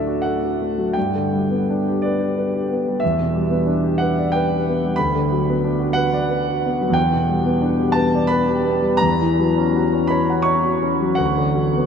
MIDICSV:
0, 0, Header, 1, 2, 480
1, 0, Start_track
1, 0, Key_signature, 2, "minor"
1, 0, Tempo, 708383
1, 651, Time_signature, 6, 3, 24, 8
1, 1605, Tempo, 649351
1, 4005, Tempo, 673401
1, 5925, Tempo, 727273
1, 8269, End_track
2, 0, Start_track
2, 0, Title_t, "Grand piano"
2, 0, Program_c, 0, 0
2, 0, Control_c, 0, 64, 127
2, 0, Note_on_c, 0, 38, 47
2, 0, Note_on_c, 0, 45, 36
2, 0, Note_on_c, 0, 54, 36
2, 0, Note_on_c, 0, 57, 38
2, 0, Note_on_c, 0, 62, 38
2, 0, Note_on_c, 0, 66, 38
2, 0, Note_on_c, 0, 69, 41
2, 0, Note_on_c, 0, 74, 67
2, 0, Note_on_c, 0, 76, 68
2, 47, Note_off_c, 0, 66, 0
2, 47, Note_on_c, 0, 66, 42
2, 124, Note_off_c, 0, 69, 0
2, 147, Note_on_c, 0, 78, 67
2, 161, Note_off_c, 0, 76, 0
2, 170, Note_on_c, 0, 69, 39
2, 246, Note_off_c, 0, 66, 0
2, 297, Note_on_c, 0, 66, 31
2, 366, Note_off_c, 0, 69, 0
2, 415, Note_off_c, 0, 57, 0
2, 415, Note_on_c, 0, 57, 34
2, 486, Note_off_c, 0, 66, 0
2, 529, Note_off_c, 0, 54, 0
2, 529, Note_on_c, 0, 54, 38
2, 604, Note_off_c, 0, 57, 0
2, 619, Note_off_c, 0, 38, 0
2, 633, Note_on_c, 0, 79, 69
2, 638, Note_off_c, 0, 78, 0
2, 649, Note_off_c, 0, 54, 0
2, 659, Note_on_c, 0, 43, 45
2, 663, Note_off_c, 0, 74, 0
2, 663, Control_c, 0, 64, 0
2, 664, Note_off_c, 0, 62, 0
2, 668, Note_off_c, 0, 45, 0
2, 751, Control_c, 0, 64, 127
2, 782, Note_on_c, 0, 50, 40
2, 896, Note_on_c, 0, 55, 37
2, 970, Note_off_c, 0, 50, 0
2, 1020, Note_on_c, 0, 59, 38
2, 1088, Note_off_c, 0, 55, 0
2, 1154, Note_on_c, 0, 62, 42
2, 1210, Note_off_c, 0, 59, 0
2, 1277, Note_on_c, 0, 67, 41
2, 1336, Note_off_c, 0, 62, 0
2, 1364, Note_off_c, 0, 79, 0
2, 1368, Note_on_c, 0, 74, 63
2, 1392, Note_on_c, 0, 71, 43
2, 1455, Note_off_c, 0, 67, 0
2, 1493, Note_on_c, 0, 67, 42
2, 1569, Note_off_c, 0, 71, 0
2, 1612, Note_on_c, 0, 71, 41
2, 1682, Note_off_c, 0, 67, 0
2, 1728, Note_on_c, 0, 67, 38
2, 1806, Note_off_c, 0, 71, 0
2, 1862, Note_on_c, 0, 59, 38
2, 1923, Note_off_c, 0, 67, 0
2, 1980, Note_on_c, 0, 55, 39
2, 2047, Note_off_c, 0, 59, 0
2, 2064, Note_off_c, 0, 43, 0
2, 2070, Note_on_c, 0, 76, 74
2, 2086, Note_off_c, 0, 74, 0
2, 2094, Note_off_c, 0, 55, 0
2, 2097, Note_on_c, 0, 40, 50
2, 2098, Control_c, 0, 64, 0
2, 2189, Control_c, 0, 64, 127
2, 2219, Note_on_c, 0, 47, 37
2, 2320, Note_on_c, 0, 55, 38
2, 2403, Note_off_c, 0, 47, 0
2, 2446, Note_on_c, 0, 59, 42
2, 2516, Note_off_c, 0, 55, 0
2, 2564, Note_on_c, 0, 62, 45
2, 2642, Note_off_c, 0, 59, 0
2, 2690, Note_on_c, 0, 67, 43
2, 2764, Note_off_c, 0, 62, 0
2, 2795, Note_on_c, 0, 78, 73
2, 2807, Note_off_c, 0, 76, 0
2, 2824, Note_on_c, 0, 71, 42
2, 2890, Note_off_c, 0, 67, 0
2, 2946, Note_on_c, 0, 74, 44
2, 3017, Note_off_c, 0, 71, 0
2, 3046, Note_on_c, 0, 79, 81
2, 3051, Note_off_c, 0, 78, 0
2, 3075, Note_on_c, 0, 71, 50
2, 3137, Note_off_c, 0, 74, 0
2, 3192, Note_on_c, 0, 67, 37
2, 3258, Note_off_c, 0, 71, 0
2, 3316, Note_on_c, 0, 59, 40
2, 3374, Note_off_c, 0, 67, 0
2, 3435, Note_on_c, 0, 55, 43
2, 3494, Note_off_c, 0, 59, 0
2, 3507, Note_off_c, 0, 40, 0
2, 3520, Note_on_c, 0, 83, 87
2, 3525, Note_off_c, 0, 79, 0
2, 3538, Note_on_c, 0, 38, 51
2, 3541, Control_c, 0, 64, 0
2, 3542, Note_off_c, 0, 55, 0
2, 3641, Control_c, 0, 64, 127
2, 3666, Note_on_c, 0, 50, 45
2, 3786, Note_on_c, 0, 54, 45
2, 3847, Note_off_c, 0, 50, 0
2, 3913, Note_on_c, 0, 59, 45
2, 3968, Note_off_c, 0, 54, 0
2, 4024, Note_on_c, 0, 62, 46
2, 4090, Note_off_c, 0, 59, 0
2, 4134, Note_on_c, 0, 66, 44
2, 4205, Note_off_c, 0, 62, 0
2, 4231, Note_on_c, 0, 78, 90
2, 4239, Note_off_c, 0, 83, 0
2, 4251, Note_on_c, 0, 71, 50
2, 4323, Note_off_c, 0, 66, 0
2, 4374, Note_on_c, 0, 74, 52
2, 4444, Note_off_c, 0, 71, 0
2, 4489, Note_on_c, 0, 71, 48
2, 4568, Note_off_c, 0, 74, 0
2, 4620, Note_on_c, 0, 66, 41
2, 4686, Note_off_c, 0, 71, 0
2, 4748, Note_on_c, 0, 59, 47
2, 4808, Note_off_c, 0, 66, 0
2, 4857, Note_on_c, 0, 54, 47
2, 4919, Note_on_c, 0, 40, 53
2, 4929, Note_off_c, 0, 59, 0
2, 4943, Note_off_c, 0, 38, 0
2, 4946, Note_on_c, 0, 79, 89
2, 4962, Note_off_c, 0, 78, 0
2, 4971, Note_off_c, 0, 54, 0
2, 4978, Control_c, 0, 64, 0
2, 5063, Control_c, 0, 64, 127
2, 5083, Note_on_c, 0, 47, 46
2, 5197, Note_on_c, 0, 55, 41
2, 5271, Note_off_c, 0, 47, 0
2, 5316, Note_on_c, 0, 59, 50
2, 5389, Note_off_c, 0, 55, 0
2, 5430, Note_on_c, 0, 62, 45
2, 5511, Note_off_c, 0, 59, 0
2, 5562, Note_on_c, 0, 67, 49
2, 5629, Note_off_c, 0, 62, 0
2, 5649, Note_on_c, 0, 81, 81
2, 5672, Note_off_c, 0, 79, 0
2, 5676, Note_on_c, 0, 71, 47
2, 5757, Note_off_c, 0, 67, 0
2, 5811, Note_on_c, 0, 74, 50
2, 5875, Note_off_c, 0, 71, 0
2, 5900, Note_on_c, 0, 83, 93
2, 5911, Note_off_c, 0, 81, 0
2, 5922, Note_on_c, 0, 71, 55
2, 5999, Note_off_c, 0, 74, 0
2, 6033, Note_on_c, 0, 67, 45
2, 6110, Note_off_c, 0, 71, 0
2, 6149, Note_on_c, 0, 59, 47
2, 6226, Note_off_c, 0, 67, 0
2, 6262, Note_on_c, 0, 55, 45
2, 6346, Note_off_c, 0, 59, 0
2, 6350, Note_off_c, 0, 40, 0
2, 6362, Note_on_c, 0, 82, 92
2, 6387, Note_off_c, 0, 83, 0
2, 6388, Note_on_c, 0, 40, 54
2, 6392, Note_off_c, 0, 55, 0
2, 6410, Control_c, 0, 64, 0
2, 6500, Control_c, 0, 64, 127
2, 6522, Note_on_c, 0, 52, 47
2, 6641, Note_on_c, 0, 54, 45
2, 6710, Note_off_c, 0, 52, 0
2, 6758, Note_on_c, 0, 61, 46
2, 6827, Note_off_c, 0, 54, 0
2, 6878, Note_on_c, 0, 66, 47
2, 6944, Note_off_c, 0, 61, 0
2, 6992, Note_on_c, 0, 61, 46
2, 7065, Note_off_c, 0, 66, 0
2, 7090, Note_on_c, 0, 83, 81
2, 7092, Note_off_c, 0, 82, 0
2, 7109, Note_on_c, 0, 73, 54
2, 7184, Note_off_c, 0, 61, 0
2, 7237, Note_on_c, 0, 78, 49
2, 7303, Note_off_c, 0, 73, 0
2, 7321, Note_on_c, 0, 85, 88
2, 7341, Note_on_c, 0, 73, 53
2, 7342, Note_off_c, 0, 83, 0
2, 7427, Note_off_c, 0, 78, 0
2, 7457, Note_on_c, 0, 66, 42
2, 7539, Note_off_c, 0, 73, 0
2, 7584, Note_on_c, 0, 61, 44
2, 7656, Note_off_c, 0, 66, 0
2, 7706, Note_on_c, 0, 54, 48
2, 7781, Note_off_c, 0, 61, 0
2, 7801, Note_off_c, 0, 40, 0
2, 7801, Note_on_c, 0, 78, 79
2, 7818, Note_off_c, 0, 85, 0
2, 7819, Note_on_c, 0, 38, 54
2, 7830, Note_off_c, 0, 54, 0
2, 7846, Control_c, 0, 64, 0
2, 7948, Note_on_c, 0, 50, 45
2, 7960, Control_c, 0, 64, 127
2, 8064, Note_on_c, 0, 54, 42
2, 8151, Note_off_c, 0, 50, 0
2, 8202, Note_on_c, 0, 59, 43
2, 8269, Note_off_c, 0, 38, 0
2, 8269, Note_off_c, 0, 54, 0
2, 8269, Note_off_c, 0, 59, 0
2, 8269, Note_off_c, 0, 78, 0
2, 8269, End_track
0, 0, End_of_file